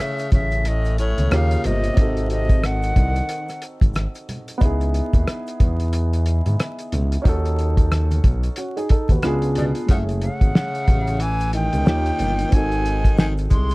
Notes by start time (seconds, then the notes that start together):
Already playing: C#3 A3 C#4 E4 G#4 E5
0.00 closed hi-hat
0.18 closed hi-hat, shaker
0.32 A1 C#3 E5, kick, closed hi-hat, high conga, low conga, shaker
0.51 closed hi-hat, shaker
0.65 A2 D#5, closed hi-hat, shaker
0.85 closed hi-hat, shaker
0.98 A2 C#5, closed hi-hat, shaker
1.18 C#2, closed hi-hat, high conga, shaker
1.31 D#2 C#3 A#3 F4 G4 C#5 F5, cross-stick, closed hi-hat, shaker
1.51 closed hi-hat, shaker
1.64 G1 C3 D#5, closed hi-hat, low conga, shaker
1.84 closed hi-hat, shaker
1.94 G#1 C4 D#4, kick, closed hi-hat, shaker
1.99 F#4 A4
2.17 closed hi-hat, shaker
2.30 C3 D#5, closed hi-hat, shaker
2.49 kick, closed hi-hat, shaker
2.63 D#3 F#5, cross-stick, closed hi-hat, shaker
2.83 closed hi-hat, shaker
2.96 C2, kick, closed hi-hat, high conga, low conga, shaker
3.16 closed hi-hat, shaker
3.29 closed hi-hat, shaker
3.48 cross-stick, closed hi-hat, shaker
3.62 closed hi-hat, shaker
3.81 G#1, kick, closed hi-hat, high conga, shaker
3.93 cross-stick, closed hi-hat, shaker
4.15 closed hi-hat, shaker
4.29 closed hi-hat, low conga, shaker
4.48 closed hi-hat, shaker
4.58 C#2 B3 D#4, kick, closed hi-hat, shaker
4.63 E4 G#4
4.81 closed hi-hat, shaker
4.94 closed hi-hat, shaker
5.13 D#2, kick, closed hi-hat, shaker
5.27 cross-stick, closed hi-hat, shaker
5.47 closed hi-hat, shaker
5.60 E2, kick, closed hi-hat, high conga, low conga, shaker
5.80 closed hi-hat, shaker
5.93 closed hi-hat, shaker
6.13 closed hi-hat, shaker
6.26 closed hi-hat, shaker
6.46 G#2, closed hi-hat, high conga, shaker
6.60 cross-stick, closed hi-hat, shaker
6.79 closed hi-hat, shaker
6.92 C#2, closed hi-hat, low conga, shaker
7.12 closed hi-hat, shaker
7.22 D#2 C#4 D#4, kick, closed hi-hat
7.26 F#4 A4, shaker
7.45 closed hi-hat, shaker
7.59 closed hi-hat, shaker
7.77 kick, closed hi-hat, shaker
7.92 cross-stick, closed hi-hat, high conga, shaker
8.11 closed hi-hat, high conga, shaker
8.24 B1, kick, closed hi-hat, high conga, low conga, shaker
8.43 closed hi-hat, shaker
8.56 C#4 F#4, closed hi-hat, shaker
8.77 D#4 G#4, closed hi-hat, shaker
8.89 D#4 A4, kick, closed hi-hat, shaker
9.09 D#2 F#4 B4, kick, closed hi-hat, high conga, shaker
9.22 C#2 B3 D4 F4 G#4, cross-stick, closed hi-hat, shaker
9.42 closed hi-hat, shaker
9.55 B2 D5, closed hi-hat, high conga, low conga, shaker
9.75 closed hi-hat, shaker
9.86 F#1 C#3 G#3 C#4, kick, closed hi-hat, shaker
9.91 A3 G#4 E5 F#5
10.09 closed hi-hat, shaker
10.22 C#3 F#5, closed hi-hat, shaker
10.41 G#1, kick, closed hi-hat, shaker
10.55 snare, shaker
10.75 closed hi-hat, shaker
10.88 A1, kick, closed hi-hat, high conga, low conga, shaker
11.07 closed hi-hat, shaker
11.20 E3 G#5, closed hi-hat, shaker
11.40 closed hi-hat, shaker
11.53 D#3 G5, closed hi-hat, shaker
11.73 C#2, closed hi-hat, high conga, shaker
11.84 D#2 A#3 C#4 F4, snare, shaker
11.88 G4
12.06 closed hi-hat, shaker
12.19 G1, closed hi-hat, low conga, shaker
12.39 closed hi-hat, shaker
12.49 G#1 C4 D#4, kick, closed hi-hat
12.53 D#3 F#4 A4 G#5, shaker
12.72 closed hi-hat, shaker
12.85 closed hi-hat, shaker
13.04 kick, closed hi-hat, shaker
13.18 D#3 G#5, snare, shaker
13.38 closed hi-hat, shaker
13.50 C2 G#3 C6, kick, closed hi-hat, high conga, low conga, shaker
13.69 closed hi-hat, shaker